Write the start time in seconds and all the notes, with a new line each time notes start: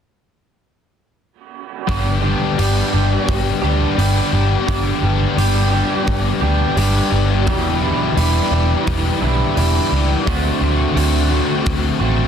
1.87 G1 G2 D3 G3 B3 D4 G4, kick, open hi-hat
2.22 G3 B3 D4 G4
2.57 G1 G3 B3 D4 G4, open hi-hat
2.92 G1 G3 B3 D4 G4
3.29 G1, kick, open hi-hat
3.62 D2 G3 B3 D4 G4
3.97 G1 G3 B3 D4 G4, open hi-hat
4.33 G1 G3 B3 D4 G4
4.67 G1 G2 D3 G3 B3 D4 G4, kick, open hi-hat
5.01 G1 G3 B3 D4 G4
5.36 G1 G3 B3 D4 G4, open hi-hat
5.71 G3 B3 D4 G4
6.07 G1, kick, open hi-hat
6.41 D2 G3 B3 D4 G4
6.76 G1 G3 B3 D4 G4, open hi-hat
7.12 G1 G3 B3 D4 G4
7.46 E1 E2 B2 E3 G3 B3 D4 E4 G4, kick, open hi-hat
7.81 E3 G3 B3 D4 E4 G4
8.15 E1 E3 G3 B3 D4 E4 G4, open hi-hat
8.51 E1 E3 G3 D4 E4
8.87 E1, kick, open hi-hat
9.21 B1 E3 G3 B3 D4 E4 G4
9.55 E1 E3 G3 B3 D4 E4 G4, open hi-hat
9.91 C#2 E3 G3 B3 G4
10.25 D2 D3 A3 C4 F#4, kick, open hi-hat
10.61 D2 A3 C4 F#4
10.95 D2 D3 A3 C4 F#4, open hi-hat
11.29 A3 C4 F#4
11.66 D2, kick, open hi-hat
12.00 A1 A3 C4 F#4